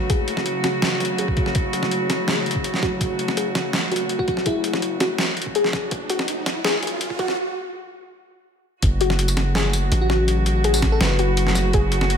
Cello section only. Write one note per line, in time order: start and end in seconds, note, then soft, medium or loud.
0.00 7.33 C#3 medium
0.00 7.33 F#3 medium
0.00 7.33 A3 medium
0.00 7.33 F#4 medium
8.82 12.17 C#3 medium
8.82 12.17 F#3 medium
8.82 12.17 A3 medium
8.82 12.17 F#4 medium